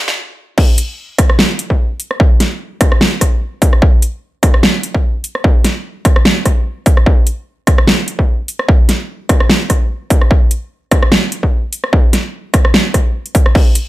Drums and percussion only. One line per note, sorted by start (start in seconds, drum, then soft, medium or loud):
0.08 snare loud
0.58 kick loud
0.58 crash loud
0.78 closed hi-hat medium
1.18 kick loud
1.18 cross-stick medium
1.18 closed hi-hat medium
1.30 cross-stick medium
1.39 snare loud
1.59 closed hi-hat medium
1.70 kick medium
2.00 open hi-hat medium
2.11 cross-stick medium
2.20 kick loud
2.40 snare medium
2.40 closed hi-hat medium
2.81 kick loud
2.81 cross-stick medium
2.81 closed hi-hat medium
2.92 cross-stick medium
3.01 snare loud
3.21 kick medium
3.21 cross-stick medium
3.21 closed hi-hat medium
3.62 kick loud
3.62 open hi-hat loud
3.73 cross-stick medium
3.82 kick loud
4.02 closed hi-hat medium
4.43 kick loud
4.43 cross-stick medium
4.43 closed hi-hat medium
4.54 cross-stick medium
4.63 snare loud
4.83 closed hi-hat medium
4.95 kick medium
5.24 open hi-hat loud
5.35 cross-stick medium
5.44 kick loud
5.64 snare medium
5.64 closed hi-hat medium
6.05 kick loud
6.05 cross-stick medium
6.05 closed hi-hat medium
6.16 cross-stick medium
6.25 snare loud
6.46 kick medium
6.46 cross-stick soft
6.46 closed hi-hat medium
6.86 kick loud
6.86 open hi-hat medium
6.97 cross-stick medium
7.06 kick loud
7.27 closed hi-hat medium
7.67 kick loud
7.67 cross-stick medium
7.67 closed hi-hat medium
7.78 cross-stick medium
7.87 snare loud
8.08 closed hi-hat medium
8.19 kick medium
8.48 open hi-hat medium
8.59 cross-stick medium
8.69 kick loud
8.89 snare medium
8.89 closed hi-hat medium
9.29 kick loud
9.29 cross-stick medium
9.29 closed hi-hat medium
9.40 cross-stick medium
9.50 snare loud
9.70 kick medium
9.70 cross-stick medium
9.70 closed hi-hat medium
10.10 kick loud
10.10 open hi-hat medium
10.22 cross-stick medium
10.31 kick loud
10.51 closed hi-hat medium
10.91 kick loud
10.91 cross-stick medium
10.91 closed hi-hat medium
11.03 cross-stick medium
11.12 snare loud
11.32 closed hi-hat medium
11.43 kick medium
11.73 open hi-hat loud
11.84 cross-stick medium
11.93 kick loud
12.13 snare medium
12.13 closed hi-hat medium
12.54 kick loud
12.54 cross-stick medium
12.54 closed hi-hat medium
12.65 cross-stick medium
12.74 snare loud
12.94 kick medium
12.94 cross-stick medium
12.94 closed hi-hat medium
13.26 closed hi-hat soft
13.35 kick loud
13.35 open hi-hat loud
13.46 cross-stick medium
13.55 kick loud
13.55 crash medium
13.75 closed hi-hat medium